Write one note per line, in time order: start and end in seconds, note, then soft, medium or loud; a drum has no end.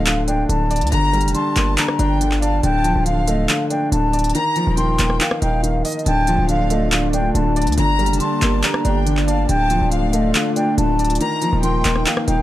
0.00 0.45 D1 loud
0.00 0.07 D3 medium
0.00 0.49 F3 medium
0.00 0.92 A3 medium
0.06 0.48 D3 medium
0.06 0.26 F5 medium
0.06 clap loud
0.06 closed hi-hat medium
0.28 0.92 D4 medium
0.28 0.47 G5 medium
0.28 closed hi-hat medium
0.49 0.83 D1 loud
0.49 0.90 D3 medium
0.49 0.89 A5 medium
0.49 closed hi-hat medium
0.71 0.92 D5 loud
0.71 closed hi-hat medium
0.76 closed hi-hat medium
0.81 0.92 D2 loud
0.81 closed hi-hat medium
0.87 closed hi-hat medium
0.92 1.26 G1 loud
0.92 1.33 D3 loud
0.92 1.32 A#5 loud
0.92 closed hi-hat medium
1.13 2.20 G3 medium
1.13 closed hi-hat soft
1.21 1.34 F1 medium
1.21 closed hi-hat medium
1.28 closed hi-hat medium
1.35 1.76 D3 medium
1.35 1.95 A5 medium
1.35 1.75 C6 medium
1.35 closed hi-hat medium
1.56 1.77 G1 loud
1.56 2.63 A#3 medium
1.56 clap medium
1.56 closed hi-hat medium
1.78 2.19 D3 medium
1.78 2.18 A#5 medium
1.78 clap loud
1.78 closed hi-hat medium
1.88 cross-stick medium
1.99 2.61 G1 loud
1.99 2.64 D4 medium
1.99 2.39 G5 medium
1.99 closed hi-hat medium
2.21 2.62 D3 medium
2.21 closed hi-hat medium
2.31 clap medium
2.42 2.63 D5 medium
2.42 2.62 F5 medium
2.42 2.61 A5 medium
2.42 closed hi-hat medium
2.63 2.94 D1 loud
2.63 3.04 D3 loud
2.63 3.04 G5 loud
2.63 3.04 A5 loud
2.63 closed hi-hat medium
2.84 3.92 F3 medium
2.84 closed hi-hat medium
2.96 3.47 D1 loud
3.06 3.47 D3 medium
3.06 3.26 F5 medium
3.06 3.47 F5 loud
3.06 closed hi-hat medium
3.27 4.35 A3 medium
3.27 3.47 D#5 medium
3.27 closed hi-hat loud
3.49 3.91 D3 medium
3.49 3.69 F5 medium
3.49 clap loud
3.49 closed hi-hat medium
3.70 4.35 D4 medium
3.70 3.90 G5 medium
3.70 closed hi-hat medium
3.92 4.33 D1 loud
3.92 4.35 D3 medium
3.92 4.32 A5 medium
3.92 closed hi-hat medium
4.13 4.35 D5 medium
4.13 closed hi-hat medium
4.19 closed hi-hat medium
4.24 closed hi-hat medium
4.29 closed hi-hat medium
4.35 4.76 D#3 loud
4.35 4.75 A#5 loud
4.35 closed hi-hat medium
4.56 5.63 F3 medium
4.56 closed hi-hat medium
4.67 4.98 D#1 loud
4.77 5.19 D#3 medium
4.77 5.38 G5 medium
4.77 5.18 C6 medium
4.77 closed hi-hat medium
4.99 5.20 D#1 loud
4.99 6.06 A#3 medium
4.99 clap loud
4.99 closed hi-hat loud
5.10 cross-stick medium
5.20 5.62 D#3 medium
5.20 5.40 F5 medium
5.20 clap loud
5.20 closed hi-hat medium
5.31 cross-stick loud
5.42 5.83 D#1 loud
5.42 6.06 D#4 medium
5.42 5.62 F5 medium
5.42 5.62 G5 medium
5.42 closed hi-hat medium
5.63 6.06 D#3 medium
5.63 5.83 F5 medium
5.63 closed hi-hat loud
5.85 6.06 D#5 medium
5.85 6.04 D#5 medium
5.85 closed hi-hat medium
5.85 open hi-hat medium
5.92 closed hi-hat medium
5.99 closed hi-hat soft
6.06 6.37 D1 loud
6.06 6.48 D3 medium
6.06 7.76 A3 medium
6.06 11.17 D4 medium
6.06 7.76 F4 medium
6.06 7.76 D5 medium
6.06 6.47 G5 loud
6.06 6.47 A5 loud
6.06 closed hi-hat medium
6.27 7.35 F3 medium
6.27 closed hi-hat medium
6.38 7.31 D1 loud
6.49 6.91 D3 medium
6.49 6.89 F5 medium
6.49 6.68 F5 medium
6.49 closed hi-hat medium
6.70 7.78 A3 medium
6.70 6.90 D#5 medium
6.70 closed hi-hat medium
6.92 7.33 D3 medium
6.92 7.11 F5 medium
6.92 clap loud
6.92 closed hi-hat medium
7.13 7.78 D4 medium
7.13 7.33 G5 medium
7.13 closed hi-hat medium
7.35 7.68 D1 loud
7.35 7.76 D3 medium
7.35 7.75 A5 medium
7.35 closed hi-hat medium
7.56 7.78 D5 loud
7.56 closed hi-hat medium
7.62 closed hi-hat medium
7.67 7.77 D2 loud
7.67 closed hi-hat medium
7.72 closed hi-hat medium
7.77 8.11 G1 loud
7.77 8.19 D3 medium
7.77 9.47 A#3 medium
7.77 9.47 G4 medium
7.77 9.47 D5 medium
7.77 8.18 A#5 loud
7.77 closed hi-hat medium
7.99 9.06 G3 medium
7.99 closed hi-hat soft
8.06 8.20 F1 loud
8.06 closed hi-hat medium
8.13 closed hi-hat medium
8.20 8.62 D3 medium
8.20 8.81 A5 medium
8.20 8.61 C6 medium
8.20 closed hi-hat medium
8.42 8.63 G1 loud
8.42 9.49 A#3 medium
8.42 clap medium
8.42 closed hi-hat loud
8.63 9.05 D3 medium
8.63 8.99 A#5 medium
8.63 clap loud
8.63 closed hi-hat medium
8.74 cross-stick loud
8.85 9.47 G1 loud
8.85 9.49 D4 medium
8.85 9.25 G5 medium
8.85 closed hi-hat medium
9.06 9.47 D3 medium
9.06 closed hi-hat medium
9.17 clap medium
9.27 9.49 D5 medium
9.27 9.48 F5 medium
9.27 9.47 A5 medium
9.27 closed hi-hat medium
9.49 9.80 D1 loud
9.49 9.90 D3 medium
9.49 11.19 A3 medium
9.49 12.42 F4 medium
9.49 11.19 D5 medium
9.49 9.89 G5 loud
9.49 9.89 A5 loud
9.49 closed hi-hat medium
9.70 10.78 F3 medium
9.70 closed hi-hat medium
9.81 10.33 D1 loud
9.92 10.33 D3 medium
9.92 10.32 F5 loud
9.92 10.11 F5 medium
9.92 closed hi-hat medium
10.13 11.21 A3 medium
10.13 10.33 D#5 medium
10.13 closed hi-hat loud
10.34 10.77 D3 medium
10.34 10.54 F5 medium
10.34 clap loud
10.34 closed hi-hat medium
10.56 11.21 D4 medium
10.56 10.76 G5 medium
10.56 closed hi-hat medium
10.78 11.19 D1 loud
10.78 11.21 D3 medium
10.78 11.18 A5 medium
10.78 closed hi-hat medium
10.99 11.21 D5 medium
10.99 closed hi-hat medium
11.05 closed hi-hat medium
11.10 closed hi-hat medium
11.15 closed hi-hat medium
11.20 11.62 D#3 loud
11.20 12.42 A#3 medium
11.20 12.42 D#4 medium
11.20 12.42 D#5 medium
11.20 11.61 A#5 loud
11.20 closed hi-hat medium
11.42 12.42 F3 medium
11.42 closed hi-hat medium
11.53 11.84 D#1 loud
11.63 12.05 D#3 medium
11.63 12.24 G5 medium
11.63 12.04 C6 medium
11.63 closed hi-hat medium
11.85 12.05 D#1 loud
11.85 12.42 A#3 medium
11.85 clap loud
11.85 closed hi-hat medium
11.96 cross-stick medium
12.06 12.42 D#3 medium
12.06 12.26 F5 medium
12.06 clap loud
12.06 closed hi-hat medium
12.17 cross-stick loud
12.27 12.42 D#1 loud
12.27 12.42 D#4 medium
12.27 12.42 F5 medium
12.27 12.42 G5 medium
12.27 closed hi-hat medium